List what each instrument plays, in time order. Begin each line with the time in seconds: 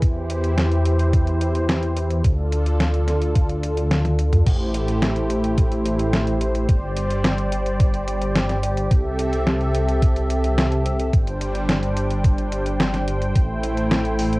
Already playing: analog synth pad E3
0.02 detuned saw bass E2, analog synth pad E4 G4 C5, kick, closed hi-hat
0.30 closed hi-hat
0.44 closed hi-hat
0.58 snare, closed hi-hat
0.72 closed hi-hat
0.85 closed hi-hat
0.99 closed hi-hat
1.13 kick, closed hi-hat
1.27 closed hi-hat
1.41 closed hi-hat
1.55 closed hi-hat
1.69 snare, closed hi-hat
1.83 closed hi-hat
1.97 closed hi-hat
2.10 closed hi-hat
2.24 detuned saw bass D2, analog synth pad D3 D4 F4 A4, kick, closed hi-hat
2.52 closed hi-hat
2.66 closed hi-hat
2.80 snare, closed hi-hat
2.94 closed hi-hat
3.08 snare, closed hi-hat
3.22 closed hi-hat
3.35 kick, closed hi-hat
3.49 closed hi-hat
3.63 closed hi-hat
3.77 closed hi-hat
3.91 snare, closed hi-hat, high tom
4.05 closed hi-hat, high tom
4.19 closed hi-hat
4.33 closed hi-hat, mid tom
4.47 detuned saw bass A1, analog synth pad A3 E4 G4 C5, kick, closed hi-hat, crash
4.74 closed hi-hat
4.88 closed hi-hat
5.02 snare, closed hi-hat
5.16 closed hi-hat
5.30 closed hi-hat
5.44 closed hi-hat
5.58 kick, closed hi-hat
5.72 closed hi-hat
5.86 closed hi-hat
5.99 closed hi-hat
6.13 snare, closed hi-hat
6.27 closed hi-hat
6.41 closed hi-hat
6.55 closed hi-hat
6.69 detuned saw bass G1, analog synth pad G3 G4 D5, kick, closed hi-hat
6.97 closed hi-hat
7.11 closed hi-hat
7.24 snare, closed hi-hat
7.38 closed hi-hat
7.52 closed hi-hat
7.66 closed hi-hat
7.80 kick, closed hi-hat
7.94 closed hi-hat
8.08 closed hi-hat
8.22 closed hi-hat
8.35 snare, closed hi-hat
8.49 snare, closed hi-hat
8.63 closed hi-hat
8.77 closed hi-hat
8.91 detuned saw bass C2, analog synth pad C4 A4 E5, kick, closed hi-hat
9.19 closed hi-hat
9.33 closed hi-hat
9.47 snare, closed hi-hat
9.61 closed hi-hat
9.75 closed hi-hat
9.88 closed hi-hat
10.02 kick, closed hi-hat
10.16 closed hi-hat
10.30 closed hi-hat
10.44 closed hi-hat
10.58 snare, closed hi-hat
10.72 closed hi-hat
10.86 closed hi-hat
10.99 closed hi-hat
11.13 detuned saw bass G1, analog synth pad G3 D4 C5 G5, kick, closed hi-hat
11.27 closed hi-hat
11.41 closed hi-hat
11.55 closed hi-hat
11.69 snare, closed hi-hat
11.83 closed hi-hat
11.97 closed hi-hat
12.11 closed hi-hat
12.24 kick, closed hi-hat
12.38 closed hi-hat
12.52 closed hi-hat
12.66 closed hi-hat
12.80 snare, closed hi-hat
12.94 snare, closed hi-hat
13.08 closed hi-hat
13.22 closed hi-hat
13.35 detuned saw bass A1, analog synth pad A3 E4, kick, closed hi-hat
13.63 closed hi-hat
13.77 closed hi-hat
13.91 snare, closed hi-hat
14.05 closed hi-hat
14.19 open hi-hat
14.33 closed hi-hat